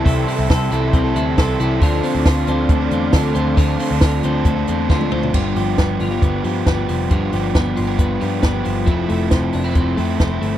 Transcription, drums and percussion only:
0.06 kick, hi-hat pedal, open hi-hat
0.28 hi-hat pedal, open hi-hat
0.50 kick, snare, hi-hat pedal, open hi-hat
0.72 hi-hat pedal, open hi-hat
0.93 kick, hi-hat pedal, open hi-hat
1.16 hi-hat pedal, open hi-hat
1.38 kick, snare, hi-hat pedal, open hi-hat
1.60 hi-hat pedal, open hi-hat
1.82 kick, hi-hat pedal, open hi-hat
2.03 hi-hat pedal, open hi-hat
2.26 kick, snare, hi-hat pedal, open hi-hat
2.47 hi-hat pedal, open hi-hat
2.69 kick, hi-hat pedal, open hi-hat
2.91 hi-hat pedal, open hi-hat
3.13 kick, snare, hi-hat pedal, open hi-hat
3.35 hi-hat pedal, open hi-hat
3.57 kick, hi-hat pedal, open hi-hat
3.79 hi-hat pedal, open hi-hat
4.01 kick, snare, hi-hat pedal, open hi-hat
4.23 hi-hat pedal, open hi-hat
4.45 kick, hi-hat pedal, open hi-hat
4.67 hi-hat pedal, open hi-hat
4.90 kick, snare
5.01 high tom
5.12 mid tom
5.23 floor tom
5.34 kick, crash
5.56 open hi-hat
5.78 kick, snare, closed hi-hat
6.00 open hi-hat
6.22 kick, closed hi-hat
6.44 open hi-hat
6.66 kick, snare, closed hi-hat
6.89 open hi-hat
7.11 kick, closed hi-hat
7.33 open hi-hat
7.55 kick, snare, closed hi-hat
7.77 open hi-hat
7.99 kick, closed hi-hat
8.21 open hi-hat
8.43 kick, snare, closed hi-hat
8.65 open hi-hat
8.87 kick, closed hi-hat
9.09 open hi-hat
9.31 kick, snare, closed hi-hat
9.53 open hi-hat
9.75 kick, closed hi-hat
9.98 open hi-hat
10.20 kick, snare, closed hi-hat
10.42 open hi-hat

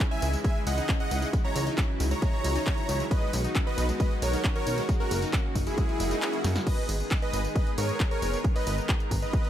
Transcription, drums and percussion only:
0.00 clap, closed hi-hat, ride, tambourine
0.22 open hi-hat, ride, tambourine
0.33 closed hi-hat, tambourine
0.44 kick, closed hi-hat, ride, tambourine
0.67 open hi-hat, ride, tambourine
0.78 closed hi-hat, tambourine
0.89 kick, clap, closed hi-hat, ride, tambourine
1.00 closed hi-hat
1.11 open hi-hat, ride, tambourine
1.22 closed hi-hat, tambourine
1.33 kick, closed hi-hat, ride, tambourine
1.56 open hi-hat, ride, tambourine
1.67 closed hi-hat, tambourine
1.78 kick, clap, closed hi-hat, ride, tambourine
2.00 open hi-hat, ride, tambourine
2.11 closed hi-hat, tambourine
2.22 kick, closed hi-hat, ride, tambourine
2.44 open hi-hat, ride, tambourine
2.56 closed hi-hat, tambourine
2.67 kick, clap, closed hi-hat, ride, tambourine
2.78 closed hi-hat
2.89 open hi-hat, ride, tambourine
3.00 closed hi-hat, tambourine
3.11 kick, closed hi-hat, ride, tambourine
3.33 open hi-hat, ride, tambourine
3.44 closed hi-hat, tambourine
3.55 kick, clap, closed hi-hat, ride, tambourine
3.78 open hi-hat, ride, tambourine
3.89 closed hi-hat, tambourine
4.00 kick, closed hi-hat, ride, tambourine
4.22 open hi-hat, ride, tambourine
4.33 closed hi-hat, tambourine
4.44 kick, clap, closed hi-hat, ride, tambourine
4.56 closed hi-hat
4.67 open hi-hat, ride, tambourine
4.78 closed hi-hat, tambourine
4.89 kick, closed hi-hat, ride, tambourine
5.11 open hi-hat, ride, tambourine
5.22 closed hi-hat, tambourine
5.33 kick, clap, closed hi-hat, ride, tambourine
5.55 kick, open hi-hat, ride, tambourine
5.67 closed hi-hat, tambourine
5.78 kick, closed hi-hat, ride, tambourine
5.89 closed hi-hat
6.00 open hi-hat, ride, tambourine
6.11 closed hi-hat, tambourine
6.22 clap, closed hi-hat, ride, tambourine
6.33 closed hi-hat
6.44 snare, open hi-hat, ride, tambourine
6.56 snare, closed hi-hat, tambourine
6.67 kick, closed hi-hat, crash, ride, tambourine
6.78 closed hi-hat
6.89 open hi-hat, ride, tambourine
7.00 closed hi-hat, tambourine
7.11 kick, clap, closed hi-hat, ride, tambourine
7.22 closed hi-hat
7.33 open hi-hat, ride, tambourine
7.45 closed hi-hat, tambourine
7.56 kick, closed hi-hat, ride, tambourine
7.67 closed hi-hat
7.78 open hi-hat, ride, tambourine
7.89 closed hi-hat, tambourine
8.00 kick, clap, closed hi-hat, ride, tambourine
8.11 closed hi-hat
8.22 open hi-hat, ride, tambourine
8.33 closed hi-hat, tambourine
8.44 kick, closed hi-hat, ride, tambourine
8.56 open hi-hat
8.67 open hi-hat, ride, tambourine
8.78 closed hi-hat, tambourine
8.89 kick, clap, closed hi-hat, ride, tambourine
9.00 closed hi-hat
9.11 kick, open hi-hat, ride, tambourine
9.22 closed hi-hat, tambourine
9.33 kick, closed hi-hat, ride, tambourine
9.45 closed hi-hat

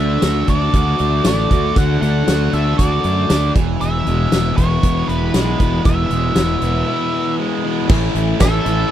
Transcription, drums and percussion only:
0.22 snare, closed hi-hat, tambourine
0.48 kick, closed hi-hat
0.74 kick, closed hi-hat
0.99 closed hi-hat
1.25 snare, closed hi-hat, tambourine
1.51 kick, closed hi-hat
1.76 kick, closed hi-hat
2.02 closed hi-hat
2.28 snare, closed hi-hat, tambourine
2.53 closed hi-hat
2.79 kick, closed hi-hat
3.04 closed hi-hat
3.30 snare, closed hi-hat, tambourine
3.56 kick, closed hi-hat
3.81 closed hi-hat
4.07 closed hi-hat
4.32 snare, closed hi-hat, tambourine
4.58 kick, closed hi-hat
4.83 kick, closed hi-hat
5.09 closed hi-hat
5.34 snare, closed hi-hat, tambourine
5.60 kick, closed hi-hat
5.85 kick, closed hi-hat
6.10 closed hi-hat
6.36 snare, closed hi-hat, tambourine
6.62 closed hi-hat
7.89 kick, crash, cowbell
8.15 closed hi-hat
8.40 kick, snare, closed hi-hat, tambourine, cowbell
8.66 closed hi-hat

